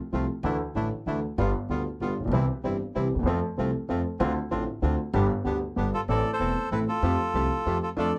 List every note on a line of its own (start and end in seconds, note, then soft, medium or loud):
0.12 0.26 C2 medium
0.12 0.26 C2 soft
0.12 0.26 C3 medium
0.12 0.26 F3 soft
0.12 0.26 A3 soft
0.12 0.26 C4 soft
0.12 0.26 F4 soft
0.12 0.26 F4 medium
0.43 0.57 D2 medium
0.43 0.57 D3 medium
0.43 0.57 E3 medium
0.43 0.57 A3 medium
0.43 0.57 D4 medium
0.43 0.57 E4 medium
0.75 0.88 A1 medium
0.75 0.88 A1 soft
0.75 0.88 A2 soft
0.75 0.88 D3 soft
0.75 0.89 E3 soft
0.75 0.88 A3 soft
0.75 0.89 A3 soft
0.75 0.88 D4 soft
0.75 0.89 E4 medium
0.75 0.89 E4 soft
1.06 1.20 D2 medium
1.06 1.20 D3 medium
1.06 1.20 E3 soft
1.06 1.20 A3 soft
1.06 1.20 D4 soft
1.06 1.20 E4 soft
1.38 1.51 G1 medium
1.38 1.51 G2 medium
1.38 1.51 D3 medium
1.38 1.51 G3 medium
1.38 1.51 B3 medium
1.38 1.51 F4 medium
1.69 1.82 D2 medium
1.69 1.83 D2 soft
1.69 1.83 D3 soft
1.69 1.83 G3 soft
1.69 1.83 B3 soft
1.69 1.83 F4 medium
1.69 1.83 F4 soft
2.00 2.14 G1 medium
2.00 2.14 G1 soft
2.00 2.14 G2 medium
2.00 2.14 D3 soft
2.00 2.14 G3 soft
2.00 2.14 B3 soft
2.00 2.14 F4 soft
2.20 2.23 A1 soft
2.20 2.25 A1 soft
2.20 2.27 A#1 medium
2.25 2.29 A#1 medium
2.25 2.31 B1 medium
2.25 2.32 B1 medium
2.31 2.45 C2 medium
2.31 2.46 C2 medium
2.31 2.46 C3 medium
2.31 2.45 E3 medium
2.31 2.46 G3 medium
2.31 2.46 C4 medium
2.31 2.46 E4 medium
2.31 2.46 G4 medium
2.63 2.77 G1 medium
2.63 2.77 G1 soft
2.63 2.77 G2 soft
2.63 2.77 E3 soft
2.63 2.77 G3 soft
2.63 2.77 C4 soft
2.63 2.77 E4 medium
2.63 2.77 G4 soft
2.94 3.08 C2 medium
2.94 3.09 C2 medium
2.94 3.09 C3 medium
2.94 3.08 E3 soft
2.94 3.08 G3 soft
2.94 3.09 G3 soft
2.94 3.08 C4 soft
2.94 3.09 C4 soft
2.94 3.08 E4 medium
2.94 3.09 G4 soft
3.15 3.19 D2 soft
3.19 3.23 D#2 medium
3.23 3.27 E2 medium
3.23 3.39 F2 medium
3.23 3.40 F3 medium
3.23 3.40 A3 medium
3.23 3.40 C4 medium
3.23 3.40 F4 medium
3.23 3.40 A4 medium
3.27 3.40 F2 medium
3.57 3.71 C2 medium
3.57 3.71 C3 medium
3.57 3.71 F3 soft
3.57 3.71 A3 soft
3.57 3.71 A3 medium
3.57 3.71 C4 soft
3.57 3.71 F4 medium
3.57 3.71 A4 soft
3.89 4.02 F2 medium
3.89 4.02 F3 medium
3.89 4.02 A3 soft
3.89 4.02 C4 soft
3.89 4.02 F4 medium
3.89 4.02 A4 medium
4.19 4.33 D2 loud
4.19 4.33 D2 medium
4.19 4.33 D3 medium
4.19 4.33 A3 medium
4.19 4.33 C4 medium
4.19 4.33 D4 medium
4.19 4.33 F4 medium
4.50 4.64 A1 medium
4.50 4.64 A2 medium
4.50 4.64 D3 soft
4.50 4.65 A3 soft
4.50 4.64 C4 medium
4.50 4.64 C4 soft
4.50 4.64 D4 soft
4.50 4.64 F4 medium
4.50 4.65 F4 medium
4.82 4.96 D2 medium
4.82 4.96 D3 medium
4.82 4.96 A3 soft
4.82 4.96 C4 soft
4.82 4.96 D4 soft
4.82 4.96 F4 medium
4.82 4.96 F4 soft
5.13 5.27 G1 loud
5.13 5.27 G1 medium
5.13 5.27 G2 medium
5.13 5.27 D3 medium
5.13 5.27 G3 medium
5.13 5.27 B3 medium
5.13 5.27 D4 medium
5.13 5.27 G4 medium
5.44 5.58 D2 medium
5.44 5.59 D2 medium
5.44 5.58 D3 medium
5.44 5.58 G3 soft
5.44 5.58 B3 soft
5.44 5.59 B3 medium
5.44 5.59 D4 medium
5.44 5.58 G4 medium
5.44 5.59 G4 medium
5.76 5.90 G1 medium
5.76 5.90 G2 medium
5.76 5.90 D3 medium
5.76 5.90 G3 soft
5.76 5.90 B3 soft
5.76 5.90 B3 medium
5.76 5.90 D4 soft
5.76 5.90 G4 medium
5.94 6.01 F4 medium
5.94 6.01 A4 medium
6.08 6.22 A1 medium
6.08 6.22 A2 medium
6.08 6.22 E3 medium
6.08 6.22 A3 medium
6.08 6.22 C4 medium
6.08 6.22 E4 medium
6.08 6.22 A4 medium
6.08 6.31 A4 medium
6.08 6.31 D5 medium
6.33 6.69 A4 medium
6.33 6.69 C5 medium
6.39 6.53 E1 soft
6.39 6.53 E2 soft
6.39 6.53 E3 soft
6.39 6.53 A3 soft
6.39 6.53 C4 soft
6.39 6.53 E4 soft
6.39 6.53 A4 medium
6.39 6.53 A4 soft
6.71 6.84 A1 soft
6.71 6.85 A1 soft
6.71 6.85 A2 soft
6.71 6.85 E3 soft
6.71 6.85 A3 soft
6.71 6.84 C4 soft
6.71 6.85 C4 soft
6.71 6.84 E4 soft
6.71 6.80 E4 soft
6.71 6.85 A4 soft
6.71 6.79 B4 medium
6.88 7.78 F4 medium
6.88 7.78 A4 medium
7.02 7.16 F2 medium
7.02 7.16 F3 medium
7.02 7.16 A3 medium
7.02 7.16 C4 medium
7.02 7.16 F4 medium
7.02 7.16 G4 medium
7.02 7.17 G4 medium
7.34 7.47 C2 medium
7.34 7.48 C2 soft
7.34 7.48 C3 soft
7.34 7.48 F3 soft
7.34 7.47 A3 soft
7.34 7.48 A3 soft
7.34 7.48 C4 soft
7.34 7.47 F4 soft
7.34 7.47 G4 medium
7.34 7.48 G4 soft
7.65 7.79 F2 soft
7.65 7.79 F2 medium
7.65 7.79 F3 soft
7.65 7.79 A3 soft
7.65 7.79 C4 soft
7.65 7.79 F4 soft
7.65 7.79 G4 soft
7.83 7.90 F4 medium
7.83 7.89 A4 medium
7.97 8.10 F2 medium
7.97 8.10 F3 medium
7.97 8.10 A3 medium
7.97 8.10 D4 medium
7.97 8.10 F4 medium
7.97 8.10 A4 medium
7.97 8.14 A4 medium
7.97 8.13 D5 medium
8.15 8.19 D5 medium